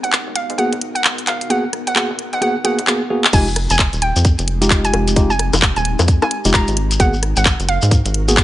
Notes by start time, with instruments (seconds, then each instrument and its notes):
Already playing: ambient pad B3 D#4 F#4 A#4
0.03 analog synth bass G#1, synth pluck F#5, closed hi-hat
0.13 clap
0.27 analog synth bass F#1
0.36 synth pluck F5, closed hi-hat
0.50 analog synth bass G#2, closed hi-hat
0.58 tine electric piano A#3 B3 F#4 G#4, synth pluck F#5, closed hi-hat
0.73 analog synth bass G#1, closed hi-hat
0.81 closed hi-hat
0.95 synth pluck F#5, closed hi-hat
1.04 clap
1.18 closed hi-hat
1.27 analog synth bass G#1, synth pluck F5, clap, closed hi-hat
1.41 closed hi-hat
1.50 tine electric piano A#3 B3 F#4 G#4, synth pluck F#5, closed hi-hat
1.73 cross-stick, closed hi-hat
1.87 analog synth bass G#1, synth pluck F#5, closed hi-hat
1.96 tine electric piano A#3 B3 F#4 G#4, synth pluck F#5, clap
2.10 analog synth bass F#1
2.19 closed hi-hat
2.33 analog synth bass G#2, synth pluck F#5, closed hi-hat
2.41 tine electric piano A#3 B3 F#4 G#4, synth pluck F#5, closed hi-hat
2.64 tine electric piano A#3 B3 F#4 G#4, synth pluck F#5, closed hi-hat
2.79 analog synth bass G#1, closed hi-hat
2.87 tine electric piano A#3 B3 F#4 G#4, clap
3.10 tine electric piano A#3 B3 F#4 G#4
3.24 clap
3.33 analog synth bass F1, ambient pad G#3 C4 D#4 G4, tine electric piano G#3 D#4 F4 G4, synth pluck G#5, kick, closed hi-hat, crash, shekere
3.48 shekere
3.56 cross-stick, closed hi-hat
3.70 analog synth bass F1, synth pluck G#5, closed hi-hat, shekere
3.79 kick, clap, shekere
3.93 analog synth bass D#1, closed hi-hat, shekere
4.02 synth pluck G5, closed hi-hat
4.16 analog synth bass F2, closed hi-hat, shekere
4.25 kick, closed hi-hat, shekere
4.39 analog synth bass F1, closed hi-hat, shekere
4.48 closed hi-hat
4.62 tine electric piano G#3 D#4 F4 G4, closed hi-hat, shekere
4.71 kick, clap, shekere
4.85 synth pluck G#5, closed hi-hat, shekere
4.94 analog synth bass F1, closed hi-hat, high bongo
5.08 closed hi-hat, shekere
5.16 tine electric piano G#3 D#4 F4 G4, kick, closed hi-hat, shekere
5.30 synth pluck G#5, shekere
5.39 cross-stick, closed hi-hat
5.53 analog synth bass F1, closed hi-hat, high bongo, shekere
5.62 kick, clap
5.76 analog synth bass D#1, synth pluck G#5, closed hi-hat, shekere
5.85 closed hi-hat
5.99 analog synth bass F2, closed hi-hat, high bongo, shekere
6.08 kick, closed hi-hat, shekere
6.22 synth pluck G#5, high bongo, shekere
6.31 closed hi-hat
6.45 analog synth bass F1, tine electric piano G#3 D#4 F4 G4, closed hi-hat, shekere
6.54 synth pluck A#5, kick, clap, shekere
6.68 analog synth bass G#1, closed hi-hat, shekere
6.77 ambient pad F#4 A#4, closed hi-hat
6.91 closed hi-hat, shekere
7.00 analog synth bass G#1, tine electric piano A#3 B3 F#4 G#4, synth pluck F#5, kick, closed hi-hat, shekere
7.13 shekere
7.23 cross-stick, closed hi-hat
7.36 analog synth bass G#1, synth pluck F#5, closed hi-hat, shekere
7.46 kick, clap, shekere
7.60 analog synth bass F#1, closed hi-hat, shekere
7.69 synth pluck F5, closed hi-hat
7.82 analog synth bass G#2, closed hi-hat, shekere
7.91 kick, closed hi-hat, shekere
8.05 analog synth bass G#1, closed hi-hat, shekere
8.14 closed hi-hat
8.28 tine electric piano A#3 B3 F#4 G#4, closed hi-hat, shekere
8.37 kick, clap, shekere